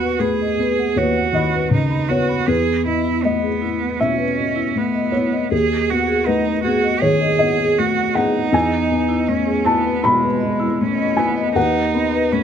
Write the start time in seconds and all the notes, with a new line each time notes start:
Already playing: D#2 B3 F#4 C#5
0.03 B4
0.19 A3 G#4 B4 B5
0.42 D#5
0.57 B3 B4
0.79 F#5
0.96 D#2 F#4 B4 C#5
1.17 F#5
1.33 D#3 D#5 B5
1.54 B4
1.71 C#3 D#4
1.90 B5
2.09 B3 F#4 B4 C#5
2.29 B5
2.47 E2 E4 G#4 B4
2.85 B3 E4 D#5
3.05 E4
3.23 A3 B3 D#5
3.43 G#4
3.62 B3 E4
3.80 B4
4.00 B2 C#4 E4 E5
4.18 B4
4.37 B3 D#5
4.56 E4
4.76 A3 B3
4.94 D#5
5.12 B3 E4 C#5
5.32 D#5
5.51 D#2 G#4
5.89 B3 F#4 F#5
6.07 G#4
6.26 A3 D#4 B4 F#5
6.46 B4
6.63 B3 F#4 G#4
6.84 D#5
7.01 D#3 G#4 C#5
7.21 D#5
7.39 B3 D#5 F#5
7.58 G#4
7.78 A3 F#4
7.96 F#5
8.14 B3 D#4 G#4 F#5
8.34 F#5
8.52 E2 E4 G#5
8.90 B3 D#5
9.09 E4
9.27 A3 C#4 D#5
9.46 G#4
9.65 B3 E4 A5
9.83 B4
10.03 B2 G#3 E4 B5
10.23 B4
10.40 B3 D#5
10.60 E4
10.81 A3 C#4
10.98 D#5
11.17 B3 E4 G#5
11.37 D#5
11.55 D#2 D#4 B4 F#5
11.93 B3 B5
12.12 B4
12.32 A3 C#4 B5